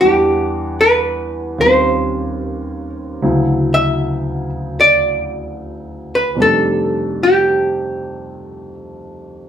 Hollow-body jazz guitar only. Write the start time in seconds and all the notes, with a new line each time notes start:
0.01 G4
0.81 B4
1.61 C5
2.49 A#4
3.74 E5
4.81 D5
6.15 B4
6.42 A4
7.23 G4